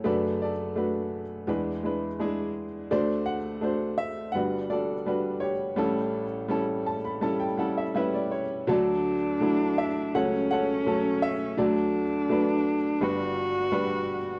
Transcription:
0.04 1.44 F#1 soft
0.04 1.44 F#2 medium
0.04 0.50 A3 medium
0.04 0.50 D4 medium
0.04 0.50 F#4 medium
0.04 0.42 A4 soft
0.04 0.50 B4 medium
0.04 0.40 D5 medium
0.42 1.45 A4 soft
0.42 1.44 D5 medium
0.76 1.21 A3 medium
0.76 1.21 D4 medium
0.76 1.22 F#4 medium
0.76 1.22 B4 medium
1.47 2.87 E2 medium
1.47 2.87 E3 medium
1.47 1.70 G#3 medium
1.47 1.70 D4 medium
1.47 1.71 E4 medium
1.47 1.71 B4 medium
1.83 2.06 G#3 medium
1.83 2.06 D4 medium
1.83 2.07 E4 medium
1.83 2.07 B4 medium
2.19 2.65 G#3 medium
2.19 2.65 D4 medium
2.19 2.65 E4 medium
2.19 2.65 G#4 medium
2.91 4.31 D2 medium
2.91 4.31 D3 medium
2.91 3.36 A3 medium
2.91 3.37 D4 medium
2.91 3.37 F#4 medium
2.91 3.37 C5 medium
2.91 3.28 D5 medium
3.26 3.94 F#5 medium
3.61 4.07 A3 medium
3.61 4.08 D4 medium
3.61 4.08 F#4 medium
3.61 4.08 C5 medium
3.98 4.32 E5 medium
4.32 5.75 G2 soft
4.32 4.57 G3 medium
4.32 4.58 D4 medium
4.32 4.58 F#4 medium
4.32 5.06 B4 medium
4.32 4.67 F#5 medium
4.36 5.75 G1 medium
4.70 4.93 G3 medium
4.70 4.93 D4 soft
4.70 4.94 F#4 soft
4.70 4.94 A4 medium
4.70 5.44 D5 medium
5.06 5.52 G3 medium
5.06 5.52 D4 medium
5.06 5.52 F#4 medium
5.06 5.52 B4 medium
5.40 7.92 G4 medium
5.40 7.91 C#5 medium
5.76 8.64 A1 medium
5.76 8.64 A2 medium
5.76 6.23 G3 medium
5.76 6.23 C#4 medium
5.76 6.24 E4 medium
5.76 6.24 A4 medium
6.49 6.95 G3 medium
6.49 6.96 C#4 medium
6.49 6.96 E4 medium
6.49 6.96 A4 medium
6.86 7.04 A5 medium
7.05 7.22 B5 medium
7.21 7.45 G3 medium
7.21 7.45 C#4 medium
7.21 7.46 E4 medium
7.21 7.46 A4 medium
7.21 7.40 A5 medium
7.40 7.58 G5 medium
7.58 7.81 G3 medium
7.58 7.82 C#4 medium
7.58 7.82 E4 medium
7.58 7.83 A4 medium
7.58 7.76 F#5 medium
7.78 7.94 E5 medium
7.95 8.41 G3 medium
7.95 8.42 C#4 medium
7.95 8.42 E4 medium
7.95 8.42 B4 medium
7.95 8.13 E5 medium
8.14 8.31 D5 medium
8.31 8.66 C#5 medium
8.67 10.10 D2 medium
8.67 10.10 D3 soft
8.67 9.14 F#3 medium
8.67 9.14 A3 medium
8.67 9.15 D4 medium
8.67 10.15 D4 medium
8.67 10.11 F#4 medium
8.67 9.15 A4 medium
8.67 9.82 D5 medium
9.40 9.87 F#3 medium
9.40 9.87 A3 medium
9.40 9.87 D4 medium
9.40 9.87 E4 medium
9.78 10.15 E5 medium
10.14 11.54 C#2 soft
10.14 11.54 C#3 soft
10.14 10.60 F#3 medium
10.14 10.60 A3 medium
10.14 11.60 C#4 medium
10.14 10.60 C#4 medium
10.14 10.51 A4 medium
10.14 10.51 C#5 medium
10.14 10.48 F#5 medium
10.51 10.86 A4 medium
10.51 11.55 C#5 medium
10.51 11.18 F#5 medium
10.86 11.32 F#3 medium
10.86 11.31 A3 medium
10.86 11.32 C#4 medium
10.86 11.32 A4 medium
11.22 11.59 E5 medium
11.58 12.98 D2 medium
11.58 12.98 D3 medium
11.58 12.03 F#3 medium
11.58 12.03 A3 medium
11.58 12.04 D4 medium
11.58 13.04 D4 medium
11.58 12.98 F#4 soft
11.58 12.98 A4 soft
11.58 12.98 D5 medium
12.29 12.75 F#3 medium
12.29 12.75 A3 medium
12.29 12.76 D4 medium
12.29 12.76 B4 medium
13.01 14.39 G1 medium
13.01 14.39 G2 medium
13.01 13.46 G3 medium
13.01 13.47 D4 medium
13.01 13.47 F#4 medium
13.01 14.39 F#4 medium
13.01 13.47 B4 medium
13.72 14.18 G3 medium
13.72 14.18 D4 medium
13.72 14.18 F#4 medium
13.72 14.18 B4 medium

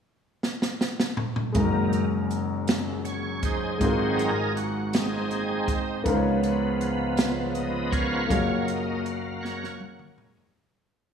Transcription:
0.43 snare medium
0.62 snare medium
0.81 snare medium
1.00 snare medium
1.17 mid tom medium
1.36 mid tom medium
1.52 3.77 F#1 medium
1.52 2.05 F#2 soft
1.52 3.77 F#2 medium
1.52 2.05 D#3 soft
1.52 3.76 G#3 medium
1.52 2.06 A#3 soft
1.52 3.76 C#4 medium
1.52 3.77 D#4 medium
1.52 kick medium
1.52 closed hi-hat medium
1.57 3.78 F#4 medium
1.57 3.79 A#4 medium
1.93 closed hi-hat soft
2.31 closed hi-hat soft
2.67 snare medium
2.67 closed hi-hat medium
3.05 3.44 C#5 medium
3.05 closed hi-hat soft
3.43 4.53 D#4 medium
3.43 4.53 G#4 medium
3.43 4.21 C5 medium
3.43 kick medium
3.43 closed hi-hat soft
3.78 6.02 G#1 soft
3.78 4.31 G#2 soft
3.78 6.02 G#2 medium
3.78 4.31 F#3 soft
3.78 6.01 G#3 medium
3.78 6.02 C4 soft
3.78 4.31 C4 soft
3.78 6.02 F4 soft
3.78 kick medium
3.78 closed hi-hat medium
3.83 6.03 F#4 soft
3.83 6.04 A#4 medium
4.16 4.52 A#4 medium
4.16 closed hi-hat soft
4.56 4.95 F#4 medium
4.56 closed hi-hat soft
4.93 6.03 C4 soft
4.93 6.02 D#4 soft
4.93 5.74 G#4 medium
4.93 snare medium
4.93 closed hi-hat medium
5.31 closed hi-hat soft
5.68 kick medium
5.68 closed hi-hat soft
6.04 8.27 C#2 medium
6.04 8.26 C#3 medium
6.04 8.27 C#3 medium
6.04 8.26 F3 soft
6.04 8.25 B3 medium
6.04 8.26 B3 medium
6.04 8.26 D#4 medium
6.04 8.27 F4 medium
6.04 kick medium
6.04 closed hi-hat medium
6.09 8.28 A#4 medium
6.09 6.14 C5 medium
6.17 8.32 C#5 medium
6.43 closed hi-hat soft
6.81 closed hi-hat soft
7.17 snare medium
7.17 closed hi-hat medium
7.54 7.94 D#5 medium
7.54 closed hi-hat soft
7.91 9.01 A#4 soft
7.91 8.69 C#5 medium
7.91 9.01 F5 medium
7.91 kick medium
7.91 closed hi-hat soft
8.27 10.50 F#1 medium
8.27 10.50 F#2 soft
8.27 10.15 F#2 soft
8.27 10.51 F#3 soft
8.27 10.49 A#3 medium
8.27 10.49 F4 soft
8.27 10.50 F#4 soft
8.27 kick medium
8.27 closed hi-hat medium
8.31 10.16 A#3 medium
8.31 10.51 G#4 soft
8.31 10.52 C#5 medium
8.65 9.05 D#5 medium
8.65 closed hi-hat soft
9.05 9.44 F5 medium
9.05 closed hi-hat soft
9.41 10.51 A#4 medium
9.41 10.51 C#5 medium
9.41 10.22 F#5 medium
9.41 snare soft
9.64 snare soft
9.81 high tom medium
9.99 mid tom medium
10.16 10.50 F#2 soft
10.16 10.51 G#3 soft
10.16 10.51 A#3 soft
10.16 mid tom medium
10.37 floor tom medium

